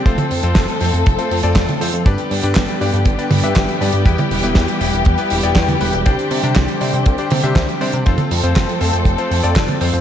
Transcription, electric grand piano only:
\new Staff \with { instrumentName = "Electric grand piano" } { \time 4/4 \key f \lydian \tempo 4 = 120 <c' f' a' c''>8. <c' f' a' c''>8. <c' f' a' c''>8. <c' f' a' c''>8 <c' f' a' d''>8. <c' f' a' c''>8 | <d' g' b' d''>8. <d' g' b' d''>8. <d' g' b' d''>8. <d' g' b' d''>8 <d' g' b' e''>8. <d' g' b' d''>8 | <b e' g' b'>8. <b e' g' b'>8. <b e' g' b'>8. <b e' g' b'>8 <b e' g' d''>8. <b e' g' b'>8 | <d' g' c'' d''>8. <d' g' c'' d''>8. <d' g' c'' d''>8. <d' g' c'' d''>8 <d' g' c'' e''>8. <d' g' c'' d''>8 |
<c' f' a' c''>8. <c' f' a' c''>8. <c' f' a' c''>8. <c' f' a' c''>8 <c' f' a' d''>8. <c' f' a' c''>8 | }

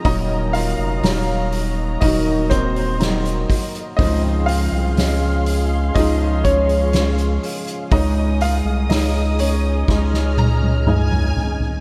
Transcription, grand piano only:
\new Staff \with { instrumentName = "Grand piano" } { \time 4/4 \key des \major \tempo 4 = 61 <ees' ees''>8 <f' f''>4 r8 <ees' ees''>8 <c' c''>4 r8 | <ees' ees''>8 <f' f''>4 r8 <ees' ees''>8 <des' des''>4 r8 | <ees' ees''>8 <f' f''>8 <ees' ees''>8 <des' des''>4. r4 | }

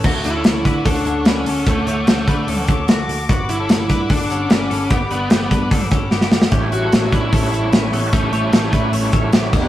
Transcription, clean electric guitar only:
\new Staff \with { instrumentName = "Clean electric guitar" } { \time 4/4 \key d \major \tempo 4 = 149 <a fis'>8. <cis' a'>8. <d' b'>8 <cis' a'>8 <cis' a'>8 <d' b'>8 <cis' a'>8 | <cis' a'>8 <e' cis''>8 <cis' a'>8 <d' b'>8 <cis' a'>8 <cis' a'>8 <a fis'>4 | <b fis'>8. <cis' a'>8. <d' b'>8 <d' a'>8 <cis' a'>8 <d' b'>8 <cis' a'>8 | <b g'>8 <d' b'>8 <b g'>8 <d' b'>8 <d' a'>8 <cis' a'>8 <b g'>4 |
<cis' g'>8. <cis' a'>8. <d' b'>8 <cis' a'>8 <cis' a'>8 <e' b'>8 <cis' a'>8 | <cis' a'>8 <e' cis''>8 <cis' a'>8 <d' b'>8 <cis' a'>8 <cis' a'>8 <b g'>4 | }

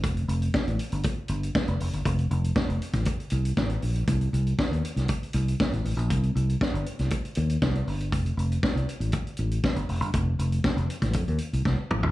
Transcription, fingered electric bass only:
\new Staff \with { instrumentName = "Fingered electric bass" } { \clef bass \time 4/4 \key f \mixolydian \tempo 4 = 119 f,,8 f,,8 r16 a,,16 r16 g,,16 r8 g,,8 r16 f,,16 f,,16 g,,16 | f,,8 f,,8 r16 f,,16 r16 a,,16 r8 c,8 a,,8 bes,,8 | c,8 c,8 r16 ees,16 r16 c,16 r8 c,8 r16 a,,16 a,,16 bes,,16 | c,8 c,8 r16 g,,16 r16 c,16 r8 ees,8 c,8 g,,8 |
f,,8 f,,8 r16 c,16 r16 a,,16 r8 a,,8 r16 g,,16 f,,16 g,,16 | f,,8 f,,8 r16 f,,16 r16 a,,16 f,16 ees,16 r16 c,16 c,16 r16 a,,16 bes,,16 | }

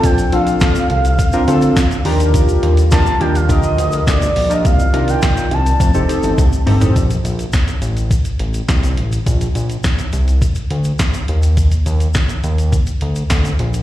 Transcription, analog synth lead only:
\new Staff \with { instrumentName = "Analog synth lead" } { \time 4/4 \key bes \major \tempo 4 = 104 g''8 f''2. r8 | r4 a''8 g''16 f''16 ees''4 d''8. ees''16 | f''8. g''8. a''2 r8 | r1 |
r1 | r1 | }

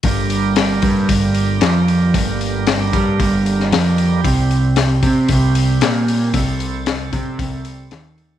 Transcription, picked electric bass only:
\new Staff \with { instrumentName = "Picked electric bass" } { \clef bass \time 4/4 \key g \minor \tempo 4 = 114 g,,4. g,8 g,,4 f,4 | g,,4. g,8 g,,4 f,4 | c,4. c8 c,4 bes,4 | c,4. c8 c,4 ees,4 | }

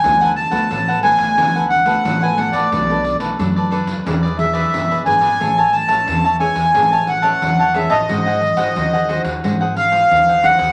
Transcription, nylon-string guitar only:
\new Staff \with { instrumentName = "Nylon-string guitar" } { \time 4/4 \key a \major \tempo 4 = 89 << { <a b fis'>8. <a b fis'>8. <a b fis'>8 <a b fis'>8 r16 <a b fis'>8. <a b fis'>16 r16 | <a d' fis'>16 <a d' fis'>8. <a d' fis'>4 <d' gis' b'>16 r16 <d' gis' b'>4 <d' gis' b'>16 r16 | <cis' gis' b'>8. <cis' b'>8. <cis' gis' b'>16 r16 <cis' gis' b'>8. <cis' b'>8. <cis' gis' b'>8 | <dis' fis' bis'>8 r16 <dis' fis' bis'>8. <dis' fis' bis'>16 r16 <dis' fis' bis'>8 r16 <dis' fis' bis'>8. <dis' fis' bis'>8 | } \\ { d4 a,4 d4 a,4 | b,4 fis4 e4 b,4 | a4 e4 a4 e4 | gis4 dis4 gis4 dis4 | } >> }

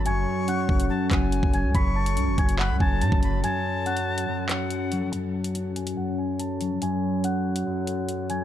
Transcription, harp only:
\new Staff \with { instrumentName = "Harp" } { \clef bass \time 4/4 \key fis \minor \tempo 4 = 142 <fis, fis>4 cis'4 fis,4. fis8 | fis,4 cis'4 fis,4. fis8 | fis,4 cis'4 fis,4. fis8 | fis,4 cis'4 fis,4. fis8 |
fis,4 cis'4 fis,4. fis8 | }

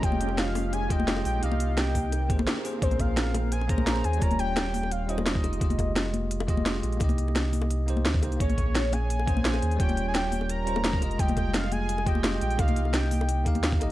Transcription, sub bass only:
\new Staff \with { instrumentName = "Sub bass" } { \clef bass \time 4/4 \key bes \dorian \tempo 4 = 172 f,,2.~ f,,8 bes,,8 | c,2~ c,8 aes,,8 r4 | bes,,2.~ bes,,8 ees,8 | ees,,2. f,,8 f,,8 |
f,,2.~ f,,8 bes,,8 | c,2. ees,8 c,8 | bes,,2.~ bes,,8 ees,8 | ees,,2. f,,8 f,,8 |
f,,2.~ f,,8 bes,,8 | c,2~ c,8 ees,4 g,,8 | }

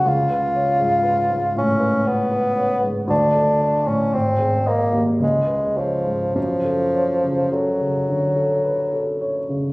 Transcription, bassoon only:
\new Staff \with { instrumentName = "Bassoon" } { \time 3/4 \key cis \phrygian \tempo 4 = 56 eis'4. cis'8 b4 | d'8. cis'16 bis8 ais16 r16 gis8 eis8 | eis4 fis4. r8 | }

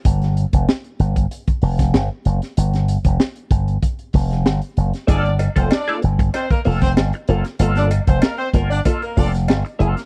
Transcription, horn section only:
\new Staff \with { instrumentName = "Horn section" } { \time 4/4 \key g \dorian \tempo 4 = 95 r1 | r1 | <d' d''>8 r16 <c' c''>16 <d' d''>8 r8 <c' c''>16 <bes bes'>16 r16 <c' c''>16 r4 | r16 <d' d''>16 r16 <c' c''>16 <bes bes'>16 <c' c''>16 r16 <d' d''>16 r16 <bes bes'>16 <d' d''>16 r4 r16 | }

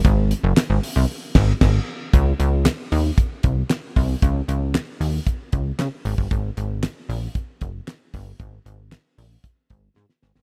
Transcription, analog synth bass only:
\new Staff \with { instrumentName = "Analog synth bass" } { \clef bass \time 4/4 \key aes \mixolydian \tempo 4 = 115 aes,,8. ges,,16 r16 aes,,16 r16 c,16 r8 aes,,8 aes,,8 r8 | des,8 des,8. r16 ees,8 r8 c,8 r8 c,8 | des,8 des,8. r16 ees,8 r8 des,8 des16 r16 aes,,16 g,,16 | aes,,8 aes,,8. r16 bes,,8 r8 ges,,8 r8 g,,8 |
aes,,8 aes,,8. r16 bes,,8 r8 aes,,8 aes,16 r16 aes,,16 g,,16 | }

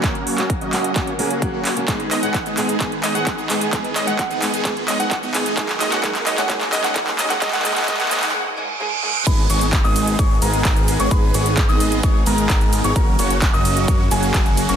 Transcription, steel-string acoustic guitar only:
\new Staff \with { instrumentName = "Steel-string acoustic guitar" } { \time 4/4 \key gis \minor \tempo 4 = 130 <fis ais cis' fis'>16 r8 <fis ais cis' fis'>16 r8 <fis ais cis' fis'>16 r16 <fis ais cis' fis'>16 r16 <fis ais cis' gis'>16 r16 <fis ais cis' fis'>8. <fis ais cis' fis'>16 | <gis, gis b dis' gis'>16 r8 <gis, gis b dis' gis'>16 r8 <gis, gis b dis' gis'>16 r16 <gis, gis b dis' gis'>16 r8 <gis, gis b dis' gis'>16 r8 <gis, gis b dis' gis'>16 r16 | <gis, gis b dis' gis'>16 r8 <gis, gis b dis' gis'>16 r8 <gis, gis b dis' gis'>16 r16 <gis, gis b dis' gis'>16 r8 <gis, gis b dis' gis'>16 r8 <gis, gis b dis' gis'>16 r16 | <gis, gis ais dis' gis'>16 r8 <gis, gis ais dis' gis'>16 <gis, gis ais dis' gis'>16 r8 <gis, gis ais dis' gis'>16 <gis, gis ais dis' gis'>16 r8 <gis, gis ais dis' gis'>16 <gis, gis ais dis' gis'>16 r8 <gis, gis ais dis' gis'>16 |
<gis, gis ais dis' gis'>16 r16 <gis, gis ais dis' gis'>16 r16 <gis, gis ais dis' gis'>16 r16 <gis, gis ais dis' gis'>16 r16 <gis, gis ais dis' gis'>16 r16 <gis, gis ais dis' gis'>16 r16 <gis, gis ais dis' gis'>16 r16 <gis, gis ais dis' gis'>16 r16 | r1 | r1 | r1 | }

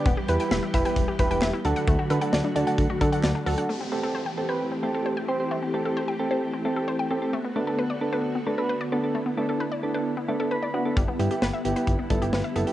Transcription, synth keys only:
\new Staff \with { instrumentName = "Synth keys" } { \time 4/4 \key a \dorian \tempo 4 = 132 << { r1 | r1 | r1 | r1 |
r1 | r2. b''4 | r1 | } \\ { r8 <e' g' b'>16 <e' g' b'>16 r8 <e' g' b'>16 <e' g' b'>16 r8 <e' g' b'>16 <e' g' b'>16 r8 <d' fis' a'>8~ | <d' fis' a'>16 r16 <d' fis' b'>16 <d' fis' a'>16 r8 <d' fis' a'>16 <d' fis' a'>16 r8 <d' fis' a'>16 <d' fis' a'>16 r8 <d' fis' a'>16 <d' fis' a'>16 | r8 <c' g' a'>16 <c' g' a'>16 r8 <c' g' a'>16 <c' g' b'>16 r8 <c' g' a'>16 <c' g' a'>16 r8 <c' g' c''>16 <c' g' c''>16 | r8 <c' g' a'>16 <c' g' a'>16 r8 <c' g' a'>16 <c' g' a'>16 r8 <c' g' a'>16 <c' g' a'>16 r8 <c' g' a'>16 <c' g' a'>16 |
r8 <b d' a'>16 <b d' a'>16 r8 <b d' a'>16 <b d' a'>16 r8 <b d' a'>16 <b d' b'>16 r8 <b d' a'>16 <b d' a'>16 | r8 <b d' a'>16 <b d' a'>16 r8 <b d' a'>16 <b d' a'>16 r8 <b d' a'>16 <b d' a'>16 r8 <b d' fis'>16 <b d' a'>16 | r8 <b e' g'>16 <b e' g'>16 r8 <b e' g'>16 <b e' g'>16 r8 <b e' a'>16 <b e' g'>16 r8 <b e' a'>16 <b e' g'>16 | } >> }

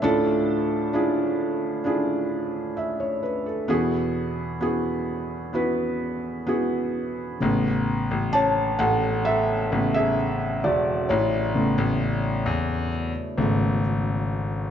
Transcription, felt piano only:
<<
  \new Staff \with { instrumentName = "Felt piano" } { \time 4/4 \key a \major \tempo 4 = 65 << { e''16 r2 r8. e''16 cis''16 b'16 a'16~ | a'16 r2. r8. | r4 <cis'' a''>8 <a' fis''>8 <a' e''>8. <gis' e''>8. <fis' d''>8 | <e' cis''>2 r2 | } \\ { <d' e' f' a'>4 <d' e' f' gis'>4 <d' e' f' gis'>4 r4 | <b e' fis' gis'>4 <b e' fis' gis'>4 <b e' fis' b'>4 <b e' fis' gis'>4 | r1 | r1 | } >> }
  \new Staff \with { instrumentName = "Felt piano" } { \clef bass \time 4/4 \key a \major <d, a,>1 | <e, b,>1 | <cis a b>4. r4 <cis a b>8 r4 | r8 <cis a b>2 <cis a b>8 r4 | }
>>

